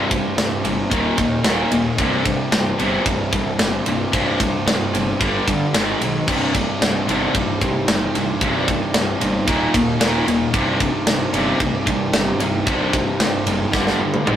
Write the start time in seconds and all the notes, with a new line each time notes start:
Already playing: C1
0.10 C2 G2 C3, kick, ride
0.36 C1 C2 G2 C3, snare, ride
0.64 G1 C2 G2 C3, ride
0.90 D#1 D#2 A#2 D#3, kick, ride
1.17 D#2 A#2 D#3, kick, ride
1.44 D#1 D#2 A#2 D#3, snare, ride
1.71 D#1 D#2 A#2 D#3, ride
1.98 C1 C2 G2 C3, kick, ride
2.25 C2 G2 C3, kick, ride
2.51 C1 C2 G2 C3, snare, ride
2.78 G1 C2 G2 C3, ride
3.05 C1 C2 G2 C3, kick, ride
3.32 C2 G2 C3, kick, ride
3.59 G1 C2 G2 C3, snare, ride
3.85 C1 C2 G2 C3, ride
4.13 C1 C2 G2 C3, kick, ride
4.40 C2 G2 C3, kick, ride
4.67 C1 C2 G2 C3, snare, ride
4.94 G1 C2 G2 C3, ride
5.21 G1 G2 D3 G3, kick, ride
5.47 G2 D3 G3, kick, ride
5.74 G#1 G#2 D#3 G#3, snare, ride
6.01 B1 G#2 D#3 G#3, ride
6.28 C1 C2 G2 C3 D#3 G3 D#4 G4, kick, crash
6.54 C2 G2 C3, kick, ride
6.81 C1 C2 G2 C3, snare, ride
7.08 G1 C2 G2 C3, ride
7.35 C1 C2 G2 C3, kick, ride
7.61 C2 G2 C3, kick, ride
7.87 G1 C2 G2 C3, snare, ride
8.14 C1 C2 G2 C3, ride
8.41 C1 C2 G2 C3, kick, ride
8.68 C2 G2 C3, kick, ride
8.94 C1 C2 G2 C3, snare, ride
9.20 G1 C2 G2 C3, ride
9.47 D#1 D#2 A#2 D#3 A#3 D#4, kick, ride
9.74 D#2 A#2 D#3, kick, ride
10.00 D#1 D#2 A#2 D#3, snare, ride
10.26 D#1 D#2 A#2 D#3, ride
10.53 C1 C2 G2 C3 D#3 G3 D#4 G4, kick, ride
10.80 C2 G2 C3, kick, ride
11.07 C1 C2 G2 C3, snare, ride
11.34 G1 C2 G2 C3, ride
11.60 C1 C2 G2 C3, kick, ride
11.87 C2 G2 C3, kick, ride
12.13 G1 C2 G2 C3, snare, ride
12.39 C1 C2 G2 C3, ride
12.66 C1 C2 G2 C3, kick, ride
12.93 C2 G2 C3, kick, ride
13.20 C1 C2 G2 C3, snare, ride
13.46 F#1 C2 G2 C3, ride
13.73 G1 G2 D3 G3, kick, snare
13.87 snare
13.99 G2 D3 G3
14.14 high tom
14.26 G#1 G#2 D#3 G#3, mid tom